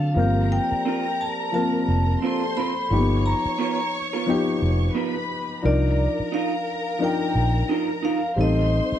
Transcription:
0.00 0.18 D3 loud
0.00 0.19 F#3 medium
0.00 0.16 C4 medium
0.00 0.19 D4 medium
0.00 0.19 G4 medium
0.00 0.14 A4 medium
0.00 0.18 A4 loud
0.00 0.54 F5 medium
0.00 0.14 A5 medium
0.14 0.58 G1 loud
0.14 1.20 F3 medium
0.14 1.21 A#3 medium
0.14 1.21 C4 medium
0.14 2.18 A#4 medium
0.14 1.22 A#4 medium
0.14 2.18 A#5 medium
0.19 2.56 G4 medium
0.44 2.77 C5 soft
0.52 1.22 G5 loud
0.64 2.95 D5 soft
0.72 muted fingered electric bass stroke medium
0.85 1.05 C4 medium
0.85 1.06 F4 medium
0.85 1.06 A#4 medium
1.21 1.53 A5 medium
1.52 2.57 F3 medium
1.52 2.58 A#3 medium
1.52 2.59 C4 medium
1.52 2.59 A#4 medium
1.52 2.59 A5 medium
1.88 2.15 F1 medium
2.22 2.42 C4 medium
2.22 2.43 F4 medium
2.22 3.22 A4 medium
2.22 2.43 A#4 medium
2.22 2.90 C5 medium
2.22 2.90 C6 medium
2.57 2.72 C4 medium
2.57 2.72 F4 medium
2.57 2.73 A#4 medium
2.57 3.27 B5 loud
2.90 3.32 G1 loud
2.90 3.95 F3 medium
2.90 2.98 A#3 medium
2.90 3.96 D#4 medium
2.90 3.96 G4 medium
2.90 4.92 C#5 medium
2.90 4.92 C#6 medium
2.98 3.99 B3 medium
3.26 3.89 A#5 loud
3.45 muted fingered electric bass stroke soft
3.58 3.78 B3 medium
3.58 3.79 F4 medium
3.58 3.79 A#4 medium
4.13 4.25 B3 soft
4.13 4.25 F4 medium
4.13 4.24 A#4 medium
4.26 5.31 F3 medium
4.26 5.32 B3 medium
4.26 5.32 D#4 medium
4.26 5.33 G4 loud
4.62 4.88 F1 medium
4.95 5.15 B3 medium
4.95 5.15 F4 medium
4.95 5.16 A#4 medium
4.95 5.62 B4 medium
4.95 5.62 B5 medium
5.62 6.06 C2 loud
5.62 6.68 F3 medium
5.62 6.68 D4 medium
5.62 6.69 D#4 medium
5.62 8.33 A#4 medium
5.62 6.69 A#4 medium
5.62 6.35 D5 medium
5.62 8.33 A#5 medium
6.20 muted fingered electric bass stroke soft
6.32 6.52 D#4 medium
6.32 6.53 F4 medium
6.32 6.53 A#4 medium
6.32 7.03 F5 medium
6.99 8.04 F3 medium
6.99 8.05 D4 medium
6.99 8.05 D#4 medium
6.99 8.06 A#4 medium
7.04 7.67 G5 medium
7.35 7.62 A#1 medium
7.69 7.89 D#4 medium
7.69 7.89 F4 medium
7.69 7.90 A#4 medium
8.03 8.18 D#4 medium
8.03 8.19 F4 medium
8.03 8.19 A#4 medium
8.03 8.39 F5 medium
8.36 8.80 A1 loud
8.36 8.99 G3 medium
8.36 8.99 C4 medium
8.36 8.99 D#4 medium
8.36 8.99 A4 medium
8.36 8.99 C5 medium
8.36 8.99 C6 medium
8.41 8.99 D#5 medium
8.92 muted fingered electric bass stroke soft

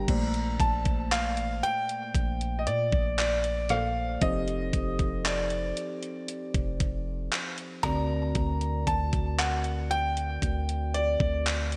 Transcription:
0.00 0.10 G3 loud
0.00 0.10 A#4 medium
0.00 0.10 G5 loud
0.00 0.63 A#5 loud
0.07 0.58 A#1 loud
0.07 1.81 A#2 medium
0.07 1.81 A3 medium
0.07 1.81 A#3 medium
0.07 1.82 C5 medium
0.07 1.82 D5 medium
0.07 kick loud
0.07 closed hi-hat medium
0.07 crash loud
0.34 closed hi-hat soft
0.60 1.39 A#1 loud
0.60 1.13 A5 loud
0.60 kick loud
0.60 closed hi-hat medium
0.85 kick medium
0.85 closed hi-hat medium
1.12 1.65 F5 medium
1.12 clap loud
1.12 closed hi-hat medium
1.37 1.62 A1 loud
1.37 closed hi-hat soft
1.63 2.63 G5 loud
1.63 closed hi-hat medium
1.89 closed hi-hat medium
2.15 2.69 A#1 loud
2.15 kick loud
2.15 closed hi-hat medium
2.41 closed hi-hat medium
2.59 2.66 D#5 medium
2.67 2.91 A#2 loud
2.67 3.15 D5 medium
2.67 closed hi-hat medium
2.92 4.18 A#1 loud
2.92 kick loud
3.18 3.72 D5 medium
3.18 clap loud
3.18 closed hi-hat medium
3.44 closed hi-hat medium
3.69 4.13 A#2 medium
3.69 4.13 A#3 medium
3.69 4.14 A4 medium
3.69 4.14 C5 medium
3.69 4.14 D5 medium
3.69 4.23 F5 medium
3.69 cross-stick medium
3.69 closed hi-hat medium
4.21 4.71 F1 loud
4.21 5.95 F3 medium
4.21 5.95 C4 medium
4.21 5.95 D#4 medium
4.21 5.95 G4 medium
4.21 5.95 A4 medium
4.21 5.95 C5 medium
4.21 5.29 D#5 loud
4.21 kick loud
4.21 closed hi-hat medium
4.48 closed hi-hat soft
4.73 5.73 F1 loud
4.73 kick loud
4.73 closed hi-hat medium
4.99 kick medium
4.99 closed hi-hat soft
5.25 7.28 D5 medium
5.25 clap loud
5.25 closed hi-hat medium
5.50 closed hi-hat soft
5.77 closed hi-hat medium
6.03 closed hi-hat soft
6.28 closed hi-hat medium
6.54 7.29 F1 loud
6.54 kick loud
6.54 closed hi-hat medium
6.80 kick medium
6.80 closed hi-hat medium
7.32 clap loud
7.32 closed hi-hat medium
7.58 closed hi-hat medium
7.83 8.33 D2 loud
7.83 9.57 D3 medium
7.83 9.57 C4 medium
7.83 9.57 F#4 medium
7.83 9.57 A#4 medium
7.83 9.58 D5 medium
7.83 8.90 A#5 loud
7.83 kick loud
7.83 cross-stick medium
7.83 closed hi-hat medium
8.35 8.85 D2 loud
8.35 kick loud
8.35 closed hi-hat medium
8.61 closed hi-hat soft
8.87 10.38 D2 loud
8.87 9.40 A5 loud
8.87 kick loud
8.87 closed hi-hat medium
9.13 kick medium
9.13 closed hi-hat medium
9.39 9.92 F#5 loud
9.39 clap loud
9.39 closed hi-hat medium
9.64 closed hi-hat soft
9.91 10.97 G5 loud
9.91 closed hi-hat medium
10.17 closed hi-hat medium
10.42 11.17 D2 loud
10.42 kick loud
10.42 closed hi-hat medium
10.69 closed hi-hat medium
10.94 11.77 D5 loud
10.94 closed hi-hat medium
11.20 11.77 D2 loud
11.20 kick loud
11.46 clap loud
11.46 closed hi-hat medium
11.72 closed hi-hat medium

